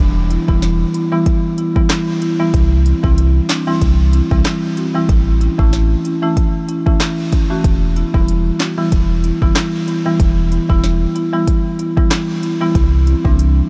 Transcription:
Already playing: downlifter
0.00 sub bass E1
0.30 marimba B3 E4, closed hi-hat
0.48 sub bass E1, marimba E3 G3 B3 E4, kick
0.62 snare, closed hi-hat
0.94 marimba B3 E4, closed hi-hat
1.12 marimba E3 G3 B3 E4
1.26 kick, closed hi-hat
1.58 marimba B3 E4, closed hi-hat
1.76 marimba E3 G3 B3 E4, kick
1.90 cross-stick, snare, clap, closed hi-hat
2.22 marimba B3 E4, closed hi-hat
2.39 marimba E3 G3 B3 E4
2.54 sub bass C2, kick, closed hi-hat
2.86 marimba C4 E4, closed hi-hat
3.03 sub bass C2, marimba E3 G3 C4 E4, kick
3.18 closed hi-hat
3.49 marimba C4 D4, snare, clap, closed hi-hat
3.67 marimba E3 G3 C4 E4
3.81 sub bass C2, kick, closed hi-hat
4.13 marimba C4 E4, closed hi-hat
4.31 sub bass C2, marimba E3 G3 C4 E4, kick
4.45 cross-stick, snare, clap, closed hi-hat
4.77 marimba C4 F#4, closed hi-hat
4.95 marimba E3 G3 C4 E4
5.09 sub bass A1, kick, closed hi-hat
5.41 marimba C#4 E4, closed hi-hat
5.59 sub bass A1, marimba E3 A3 C#4 E4, kick
5.73 snare, closed hi-hat
6.05 marimba C#4 E4, closed hi-hat
6.22 marimba E3 A3 C#4 E4
6.37 kick, closed hi-hat
6.68 marimba C#4 E4, closed hi-hat
6.86 marimba E3 A3 C#4 E4, kick
7.00 cross-stick, snare, clap, closed hi-hat
7.32 marimba C#4 E4, kick, closed hi-hat
7.50 marimba E3 A3 C#4 F#4
7.64 sub bass E1, kick, closed hi-hat
7.96 marimba B3 E4, closed hi-hat
8.14 sub bass E1, marimba E3 G3 B3 E4, kick
8.28 closed hi-hat
8.60 marimba B3 F#4, snare, clap, closed hi-hat
8.78 marimba E3 G3 B3 E4
8.92 sub bass E1, kick, closed hi-hat
9.24 marimba B3 E4, closed hi-hat
9.42 sub bass F#1, marimba E3 G3 B3 E4, kick
9.56 cross-stick, snare, clap, closed hi-hat
9.88 marimba B3 E4, closed hi-hat
10.06 marimba E3 G3 B3 E4
10.20 sub bass E1, kick, closed hi-hat
10.52 marimba B3 E4, closed hi-hat
10.69 sub bass E1, marimba E3 G3 B3 E4, kick
10.84 snare, closed hi-hat
11.15 marimba B3 E4, closed hi-hat
11.33 marimba E3 G3 B3 E4
11.47 kick, closed hi-hat
11.79 marimba B3 E4, closed hi-hat
11.97 marimba E3 G3 B3 E4, kick
12.11 cross-stick, snare, clap, closed hi-hat
12.43 marimba B3 E4, closed hi-hat
12.61 marimba E3 G3 B3 E4
12.75 sub bass C2, kick, closed hi-hat
13.07 marimba C4 E4, closed hi-hat
13.25 sub bass C2, marimba E3 G3 C4 D4, kick
13.39 closed hi-hat

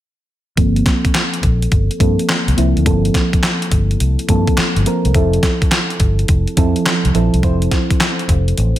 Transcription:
0.57 fingered electric bass G1, fm electric piano F3 A#3 C4 A4, kick, closed hi-hat
0.76 closed hi-hat
0.86 kick, snare, closed hi-hat
1.05 muted fingered electric bass stroke, kick, closed hi-hat
1.15 snare, clap, closed hi-hat
1.34 closed hi-hat
1.43 fingered electric bass A#1, kick, closed hi-hat
1.62 closed hi-hat
1.72 fingered electric bass G1, kick, closed hi-hat
1.91 closed hi-hat
2.00 fingered electric bass G2, fm electric piano F3 A#3 C4 A4, kick, closed hi-hat
2.19 closed hi-hat
2.29 snare, clap, closed hi-hat
2.48 fingered electric bass C2, closed hi-hat
2.57 fingered electric bass C2, fm electric piano F3 A#3 C4 E4, closed hi-hat
2.77 fingered electric bass D2, closed hi-hat
2.85 fingered electric bass G1, fm electric piano F3 A#3 C4 A4, kick, closed hi-hat
3.05 closed hi-hat
3.14 kick, snare, closed hi-hat
3.33 muted fingered electric bass stroke, kick, closed hi-hat
3.43 snare, clap, closed hi-hat
3.62 closed hi-hat
3.72 fingered electric bass G1, kick, closed hi-hat
3.91 closed hi-hat
4.00 fingered electric bass C2, closed hi-hat
4.19 closed hi-hat
4.28 fingered electric bass G2, fm electric piano F3 A#3 C4 A4, kick, closed hi-hat
4.47 kick, closed hi-hat
4.57 muted fingered electric bass stroke, snare, clap, closed hi-hat
4.76 fingered electric bass G1, closed hi-hat
4.86 fm electric piano F3 A#3 C4 A#4, closed hi-hat
5.05 fingered electric bass C2, closed hi-hat
5.14 fingered electric bass F1, fm electric piano F3 C4 E4 A4, kick, closed hi-hat
5.33 closed hi-hat
5.43 kick, snare, closed hi-hat
5.62 muted fingered electric bass stroke, kick, closed hi-hat
5.72 snare, clap, closed hi-hat
5.90 closed hi-hat
6.00 fingered electric bass G1, kick, closed hi-hat
6.19 closed hi-hat
6.28 fingered electric bass F1, kick, closed hi-hat
6.47 closed hi-hat
6.57 fingered electric bass F2, fm electric piano F3 C4 E4 A4, kick, closed hi-hat
6.76 closed hi-hat
6.86 snare, clap, closed hi-hat
7.05 fingered electric bass C2, closed hi-hat
7.14 fingered electric bass A#1, fm electric piano F3 C4 E4 A4, closed hi-hat
7.33 fingered electric bass C2, closed hi-hat
7.43 fingered electric bass F1, fm electric piano F3 C4 E4 C5, kick, closed hi-hat
7.62 closed hi-hat
7.71 kick, snare, closed hi-hat
7.91 muted fingered electric bass stroke, kick, closed hi-hat
8.00 snare, clap, closed hi-hat
8.19 closed hi-hat
8.29 fingered electric bass F1, kick, closed hi-hat
8.48 closed hi-hat
8.58 fingered electric bass A1, closed hi-hat

